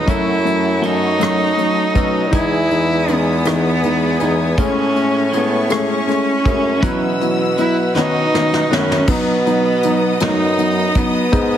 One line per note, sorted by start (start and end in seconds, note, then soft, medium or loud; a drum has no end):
0.00 0.11 D#4 loud
0.06 1.65 F#2 medium
0.06 0.33 F#3 medium
0.06 0.81 F#3 medium
0.06 0.33 A3 medium
0.06 0.33 C#4 medium
0.06 0.82 C#4 medium
0.06 0.86 E4 loud
0.06 0.83 F#4 medium
0.06 2.31 A4 medium
0.06 0.84 A4 medium
0.06 2.30 C#5 medium
0.06 2.31 F#5 medium
0.06 2.30 C#6 medium
0.06 kick loud
0.06 closed hi-hat medium
0.45 0.71 F#3 medium
0.45 0.71 A3 medium
0.45 0.71 C#4 medium
0.45 closed hi-hat soft
0.81 1.08 F#3 medium
0.81 1.20 F#3 medium
0.81 1.08 A3 medium
0.81 1.08 C#4 medium
0.81 1.21 C#4 medium
0.81 2.34 D#4 loud
0.81 1.20 F#4 soft
0.81 1.19 A4 medium
0.81 closed hi-hat medium
1.19 1.46 F#3 medium
1.19 1.96 F#3 medium
1.19 1.46 A3 medium
1.19 1.46 C#4 medium
1.19 1.96 C#4 medium
1.19 1.96 F#4 medium
1.19 1.94 A4 medium
1.19 cross-stick medium
1.19 closed hi-hat loud
1.57 1.83 F#3 medium
1.57 1.83 A3 medium
1.57 1.83 C#4 medium
1.57 closed hi-hat soft
1.94 2.35 B2 medium
1.94 2.21 F#3 medium
1.94 2.21 A3 medium
1.94 2.21 C#4 medium
1.94 2.34 F#4 medium
1.94 2.33 A4 medium
1.94 kick medium
1.94 closed hi-hat medium
1.98 2.34 C#4 soft
2.31 4.17 E2 loud
2.31 2.58 E3 medium
2.31 3.13 E3 medium
2.31 2.58 G#3 medium
2.31 3.08 G#3 medium
2.31 3.08 B3 medium
2.31 2.58 D#4 medium
2.31 4.56 B4 medium
2.31 6.80 G#5 medium
2.31 4.57 D#6 medium
2.31 kick loud
2.31 closed hi-hat medium
2.35 3.13 E4 loud
2.35 3.10 G#4 medium
2.70 2.96 E3 medium
2.70 2.96 G#3 medium
2.70 2.96 D#4 medium
2.70 closed hi-hat soft
3.08 3.34 E3 medium
3.08 3.34 G#3 medium
3.08 3.46 G#3 medium
3.08 3.46 B3 medium
3.08 3.34 D#4 medium
3.08 3.45 D#4 medium
3.08 3.45 G#4 medium
3.08 closed hi-hat medium
3.12 4.62 B3 medium
3.45 3.71 E3 medium
3.45 4.24 E3 soft
3.45 3.71 G#3 medium
3.45 4.57 G#3 medium
3.45 4.21 B3 medium
3.45 3.72 D#4 medium
3.45 4.20 D#4 medium
3.45 4.20 G#4 medium
3.45 cross-stick loud
3.45 closed hi-hat loud
3.83 4.09 E3 medium
3.83 4.09 G#3 medium
3.83 4.09 D#4 medium
3.83 closed hi-hat soft
4.20 4.55 E2 medium
4.20 4.47 E3 medium
4.20 4.47 G#3 medium
4.20 4.58 B3 soft
4.20 4.58 D#4 soft
4.20 4.47 D#4 medium
4.20 4.58 G#4 medium
4.20 closed hi-hat medium
4.58 6.15 A2 loud
4.58 4.84 G#3 medium
4.58 5.30 A3 medium
4.58 4.84 A3 medium
4.58 6.81 A3 medium
4.58 5.32 C#4 medium
4.58 4.84 C#4 loud
4.58 5.38 C#4 loud
4.58 5.34 E4 medium
4.58 5.33 G#4 medium
4.58 6.82 C#6 medium
4.58 kick medium
4.58 closed hi-hat medium
4.95 5.21 G#3 medium
4.95 5.21 A3 medium
4.95 5.21 C#4 medium
4.95 closed hi-hat soft
5.32 5.59 G#3 medium
5.32 5.70 A3 medium
5.32 5.59 A3 medium
5.32 5.70 C#4 medium
5.32 5.59 C#4 medium
5.32 5.70 E4 medium
5.32 5.69 G#4 medium
5.32 closed hi-hat medium
5.36 5.75 B3 medium
5.69 5.96 G#3 medium
5.69 5.96 A3 medium
5.69 6.46 A3 medium
5.69 5.96 C#4 medium
5.69 6.46 C#4 medium
5.69 6.44 E4 medium
5.69 6.43 G#4 medium
5.69 cross-stick loud
5.69 closed hi-hat medium
5.73 7.60 C#4 medium
6.07 6.33 G#3 medium
6.07 6.33 A3 medium
6.07 6.34 C#4 medium
6.07 cross-stick soft
6.07 closed hi-hat soft
6.44 6.81 F#2 medium
6.44 6.71 G#3 medium
6.44 6.72 A3 medium
6.44 6.72 C#4 medium
6.44 6.82 C#4 soft
6.44 6.81 E4 soft
6.44 6.82 G#4 medium
6.44 kick medium
6.44 closed hi-hat medium
6.81 7.57 B2 medium
6.81 7.91 B2 medium
6.81 7.57 E3 medium
6.81 7.56 F#3 medium
6.81 7.09 F#3 medium
6.81 7.57 B3 loud
6.81 7.09 B3 medium
6.81 7.57 E4 medium
6.81 7.09 E4 medium
6.81 7.58 B4 loud
6.81 9.06 B4 medium
6.81 9.06 F#5 medium
6.81 7.95 E6 medium
6.81 kick loud
6.81 closed hi-hat medium
7.21 7.47 F#3 medium
7.21 7.47 B3 medium
7.21 7.47 E4 medium
7.21 closed hi-hat medium
7.56 7.94 F#3 medium
7.56 7.84 F#3 medium
7.56 7.95 B3 medium
7.56 7.85 B3 medium
7.56 7.95 E4 medium
7.56 7.84 E4 medium
7.56 7.77 E4 medium
7.56 7.93 B4 medium
7.56 closed hi-hat medium
7.94 8.67 B2 medium
7.94 8.71 B2 medium
7.94 8.21 D#3 medium
7.94 8.75 D#3 medium
7.94 8.73 F#3 medium
7.94 8.22 B3 medium
7.94 8.71 C#4 medium
7.94 8.22 C#4 medium
7.94 8.71 D#4 medium
7.94 8.70 B4 medium
7.94 9.06 D#5 medium
7.94 9.07 C#6 medium
7.94 snare medium
7.99 8.76 D#4 loud
8.33 8.59 D#3 medium
8.33 8.59 B3 medium
8.33 8.60 C#4 medium
8.33 snare medium
8.54 snare medium
8.70 9.06 F#2 medium
8.70 8.97 D#3 medium
8.70 9.09 F#3 soft
8.70 8.97 B3 medium
8.70 8.97 C#4 medium
8.70 9.09 C#4 soft
8.70 9.12 C#4 medium
8.70 9.09 D#4 soft
8.70 9.08 B4 medium
8.70 snare medium
8.92 snare medium
9.08 10.17 B2 loud
9.08 9.34 F#3 medium
9.08 9.34 B3 medium
9.08 10.22 B3 medium
9.08 9.34 D#4 loud
9.08 11.57 B4 medium
9.08 11.57 D#5 medium
9.08 11.31 F#5 medium
9.08 11.57 D#6 medium
9.08 kick loud
9.08 crash medium
9.46 9.72 F#3 medium
9.46 9.72 B3 medium
9.46 9.72 D#4 medium
9.46 closed hi-hat medium
9.83 10.10 F#3 medium
9.83 10.10 B3 medium
9.83 10.10 D#4 medium
9.83 closed hi-hat medium
10.20 11.02 F#2 medium
10.20 10.47 F#3 medium
10.20 10.47 B3 medium
10.20 10.47 D#4 medium
10.20 11.00 D#4 medium
10.20 snare loud
10.20 closed hi-hat medium
10.58 10.84 F#3 medium
10.58 10.84 B3 medium
10.58 10.85 D#4 medium
10.58 closed hi-hat medium
10.95 11.21 F#3 medium
10.95 11.22 B3 medium
10.95 11.57 B3 medium
10.95 11.22 D#4 medium
10.95 kick medium
10.95 closed hi-hat medium
11.32 11.57 G#2 loud
11.32 11.57 G#3 medium
11.32 11.57 B3 medium
11.32 11.57 D#4 loud
11.32 11.57 G#5 medium
11.32 kick loud
11.32 closed hi-hat medium